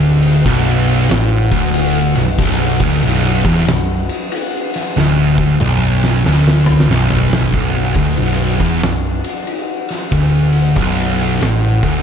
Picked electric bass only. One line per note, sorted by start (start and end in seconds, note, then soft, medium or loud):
0.00 0.42 D1 loud
0.46 1.07 B0 loud
1.11 1.49 A1 loud
1.52 2.12 D1 loud
2.17 2.38 B0 medium
2.39 2.78 B0 medium
2.81 3.02 D1 medium
3.05 3.43 B0 medium
3.45 3.66 E1 loud
3.70 4.08 B0 medium
4.97 5.57 D1 loud
5.62 6.22 B0 loud
6.26 6.86 D1 loud
6.90 7.51 B0 medium
7.54 7.93 B0 medium
7.95 8.17 D1 loud
8.19 8.58 B0 loud
8.60 8.82 E1 medium
8.83 9.22 B0 medium
10.13 10.73 D1 medium
10.77 11.38 B0 loud
11.43 11.81 A1 loud
11.83 12.03 D1 loud